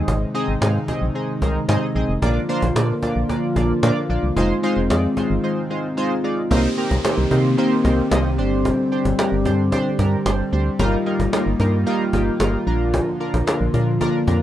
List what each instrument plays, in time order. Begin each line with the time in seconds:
Already playing: analog synth pad C3 D#3 G#3 D#4, synth keys C4 D#4 G#4 D#5
0.08 fm bass G#1, cajon bass
0.35 synth keys C4 D#4 G#4 D#5, cajon slap
0.48 fm bass G#1
0.61 fm bass G#2, synth keys C4 D#4 G#4 F5, cajon slap
0.88 synth keys C4 D#4 G#4 D#5, cajon bass
1.02 fm bass A#1
1.15 synth keys C4 D#4 G#4 D#5, cajon slap
1.42 fm bass C2, synth keys C4 D#4 G#4 A#4, cajon bass
1.69 fm bass G#2, synth keys C4 D#4 G#4 D#5, cajon slap
1.95 fm bass A#1, synth keys C4 D#4 G#4 D#5
2.09 fm bass F1
2.22 fm bass A#1, analog synth pad D3 F3 A#3 F4, synth keys A#3 D4 F4 D5, cajon bass
2.49 synth keys A#3 D4 F4 C5, cajon slap
2.63 fm bass A#1, cajon bass
2.76 fm bass A#2, synth keys A#3 D4 F4 D5, cajon slap
3.02 synth keys A#3 D4 F4 D5, cajon bass
3.16 fm bass A#1
3.29 synth keys A#3 D4 F4 D5, cajon bass
3.56 fm bass A#1, synth keys A#3 D4 F4 D5, cajon bass
3.83 fm bass A#2, synth keys A#3 D4 F4 D5, cajon slap
4.09 fm bass A#1, synth keys A#3 D4 F4 D5
4.23 fm bass C2
4.36 fm bass F1, analog synth pad D#3 G#3 C4, synth keys G#3 D#4 F4 C5, cajon bass
4.63 synth keys G#3 D#4 F4 C5
4.77 fm bass F1
4.90 fm bass F2, synth keys G#3 D#4 F4 D5, cajon slap
5.17 synth keys G#3 D#4 F4 C5, cajon bass
5.30 fm bass G1
5.43 synth keys G#3 D#4 F4 C5
5.70 synth keys G#3 D#4 F4 C5
5.97 synth keys G#3 D#4 F4 C5
6.24 synth keys G#3 D#4 F4 D5
6.51 fm bass C2, analog synth pad D#3 A#3 C4 G4, synth keys A#3 C4 D#4 G4 C5, cajon bass, downlifter
6.77 synth keys A#3 C4 D#4 G4 A#4, cajon slap
6.91 fm bass C2, cajon bass
7.04 synth keys A#3 C4 D#4 G4 C5, cajon slap
7.18 fm bass C2
7.31 fm bass C3, synth keys A#3 C4 D#4 G4 C5, cajon bass
7.58 synth keys A#3 C4 D#4 G4 C5, cajon slap
7.85 fm bass C2, synth keys A#3 C4 D#4 G4 C5, cajon bass
8.11 fm bass C2, synth keys A#3 C4 D#4 G4 D#5, cajon slap
8.38 fm bass G1, analog synth pad D3 G3, synth keys D4 G4 C5
8.65 cajon bass
8.92 synth keys D4 G4 C5, cajon slap
9.05 fm bass G1, cajon bass
9.19 synth keys D4 G4 A#4, cajon slap
9.32 fm bass G1
9.45 fm bass G2, synth keys D4 G4 C5, cajon bass
9.72 synth keys D4 G4 C5, cajon bass
9.99 fm bass G2, synth keys D4 G4 A#4, cajon bass
10.26 fm bass G1, synth keys D4 G4 C5, cajon slap
10.52 fm bass D2, synth keys D4 G4 C5
10.79 fm bass G1, analog synth pad D#3 A#3 F4, synth keys G3 A#3 D#4 F4 A#4, cajon bass
11.06 synth keys G3 A#3 D#4 F4 A#4, cajon slap
11.20 fm bass G1, cajon bass
11.33 synth keys G3 A#3 D#4 F4 A#4, cajon slap
11.46 fm bass G1
11.60 fm bass G2, synth keys G3 A#3 D#4 F4 A#4, cajon bass
11.86 synth keys G3 A#3 D#4 F4 A#4, cajon slap
12.13 fm bass G1, synth keys G3 A#3 D#4 F4 G4, cajon bass
12.40 fm bass G1, synth keys G3 A#3 D#4 F4 A#4, cajon slap
12.67 fm bass A#1, analog synth pad D3 F3, synth keys D4 F4 A#4
12.94 cajon bass
13.20 synth keys D4 F4 A#4, cajon slap
13.34 fm bass A#1, cajon bass
13.47 synth keys D4 F4 A#4, cajon slap
13.61 fm bass A#1
13.74 fm bass A#2, synth keys D4 F4 A#4, cajon bass
14.01 synth keys D4 F4 A#4, cajon bass
14.27 fm bass F2, synth keys D4 F4 A#4, cajon bass